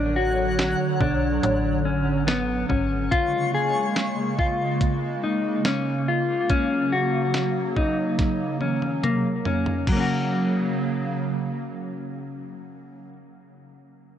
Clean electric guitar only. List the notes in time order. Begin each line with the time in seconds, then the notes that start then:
Already playing: D4
0.16 F#4
1.01 D4
1.85 C#4
2.27 B3
2.69 C#4
3.11 F4
3.55 G#4
4.39 F4
5.24 D#4
5.66 C#4
6.08 F4
6.50 C#4
6.92 F#4
7.77 D#4
8.61 C#4
9.04 A#3
9.46 C#4
9.89 F#3 A#3
9.97 C#4 F#4